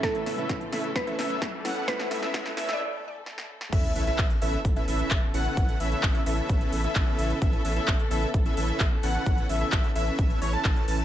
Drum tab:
CC |----------------|----------------|x---------------|----------------|
HH |xxoxxxoxxxoxx-o-|xxoxxxox--------|xxoxxxoxxxoxx-o-|xxoxxxoxxxoxx-ox|
CP |----------------|----------------|----x-------x---|----x-------x---|
SD |o-o-o-o-o-o-o-o-|oooooooo----oo-o|----------------|----------------|
BD |o---o---o---o---|o---o-----------|o---o---o---o---|o---o---o---o---|

CC |----------------|----------------|
HH |xxoxxxoxxxoxx-o-|xxoxxxoxxxoxxxo-|
CP |----x-------x---|----x-------x---|
SD |----------------|----------------|
BD |o---o---o---o---|o---o---o---o---|